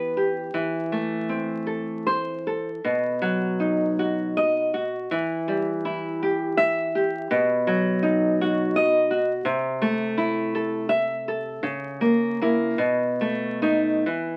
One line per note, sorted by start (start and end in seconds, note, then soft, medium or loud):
0.00 0.49 E3 soft
0.00 0.15 B3 soft
0.00 0.16 G4 soft
0.00 0.39 B4 medium
0.17 0.54 G4 soft
0.54 2.79 E3 soft
0.92 2.06 A3 soft
1.29 2.45 C4 soft
1.67 2.46 A4 soft
2.07 2.68 C5 medium
2.47 2.84 A4 soft
2.85 5.07 B2 medium
3.22 4.36 F#3 soft
3.60 4.73 D#4 soft
3.99 4.72 F#4 soft
4.37 4.96 D#5 medium
4.74 5.10 F#4 soft
5.11 7.27 E3 medium
5.48 6.57 G3 soft
5.85 6.57 E4 soft
6.23 6.94 G4 medium
6.57 7.16 E5 medium
6.95 7.31 G4 soft
7.31 9.41 B2 medium
7.67 8.75 F#3 medium
8.03 9.09 D#4 medium
8.41 9.09 F#4 medium
8.76 9.31 D#5 medium
9.11 9.45 F#4 soft
9.45 11.59 C3 medium
9.82 10.90 A3 medium
10.18 10.89 E4 medium
10.55 11.27 A4 medium
10.89 11.48 E5 medium
11.28 11.64 A4 medium
11.63 12.77 C#3 medium
12.01 12.40 A#3 soft
12.41 12.77 A#3 soft
12.41 12.77 E4 medium
12.78 14.04 B2 medium
13.21 13.62 A3 soft
13.62 14.04 A3 soft
13.62 14.04 D#4 medium
14.06 14.37 E3 medium